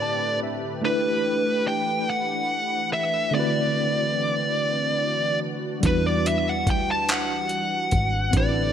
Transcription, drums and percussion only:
5.83 kick loud
5.83 closed hi-hat medium
6.26 closed hi-hat medium
6.67 kick medium
6.67 closed hi-hat soft
7.09 clap loud
7.09 closed hi-hat medium
7.49 closed hi-hat soft
7.91 kick loud
7.91 closed hi-hat medium
8.33 kick loud
8.33 closed hi-hat medium

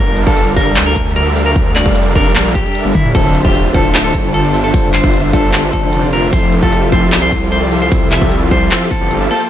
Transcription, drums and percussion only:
0.17 closed hi-hat medium
0.27 kick loud
0.37 closed hi-hat medium
0.56 kick loud
0.56 closed hi-hat medium
0.76 clap loud
0.76 closed hi-hat medium
0.96 kick medium
0.96 closed hi-hat medium
1.16 closed hi-hat medium
1.36 open hi-hat loud
1.56 kick loud
1.56 closed hi-hat medium
1.76 clap medium
1.76 closed hi-hat medium
1.86 kick loud
1.96 closed hi-hat medium
2.15 kick loud
2.15 closed hi-hat medium
2.35 clap loud
2.35 closed hi-hat medium
2.55 kick medium
2.55 closed hi-hat medium
2.75 closed hi-hat medium
2.85 high tom medium
2.95 kick medium
2.95 open hi-hat medium
2.95 mid tom medium
3.05 mid tom medium
3.15 kick loud
3.15 closed hi-hat medium
3.15 ride soft
3.35 closed hi-hat medium
3.45 kick loud
3.55 closed hi-hat medium
3.74 kick loud
3.74 closed hi-hat medium
3.95 clap loud
3.95 closed hi-hat medium
3.95 ride soft
4.14 kick medium
4.14 closed hi-hat medium
4.34 closed hi-hat medium
4.54 open hi-hat medium
4.74 kick loud
4.74 closed hi-hat medium
4.74 ride soft
4.94 clap medium
4.94 closed hi-hat medium
5.04 kick loud
5.14 closed hi-hat medium
5.33 kick loud
5.33 closed hi-hat medium
5.53 clap loud
5.53 closed hi-hat medium
5.53 ride soft
5.73 kick medium
5.73 closed hi-hat medium
5.93 closed hi-hat medium
6.13 open hi-hat medium
6.33 kick loud
6.33 closed hi-hat medium
6.33 ride soft
6.53 closed hi-hat medium
6.63 kick loud
6.72 closed hi-hat medium
6.92 kick loud
6.92 closed hi-hat medium
7.12 clap loud
7.12 closed hi-hat medium
7.12 ride soft
7.32 kick medium
7.32 closed hi-hat medium
7.52 closed hi-hat medium
7.72 open hi-hat medium
7.92 kick loud
7.92 closed hi-hat medium
7.92 ride soft
8.12 clap medium
8.12 closed hi-hat medium
8.21 kick loud
8.31 closed hi-hat medium
8.51 kick loud
8.51 closed hi-hat medium
8.71 clap loud
8.71 closed hi-hat medium
8.71 ride soft
8.91 kick medium
8.91 closed hi-hat medium
9.11 closed hi-hat medium
9.31 open hi-hat medium

